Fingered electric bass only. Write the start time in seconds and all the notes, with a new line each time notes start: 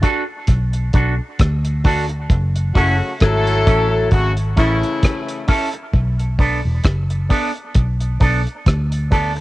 0.48 B1
0.94 B1
1.40 D2
2.30 F#1
2.76 F#1
3.22 G#1
3.67 A1
4.12 G#1
4.58 A1
5.94 B1
6.65 E1
6.85 F#1
7.76 B1
8.21 B1
8.67 D2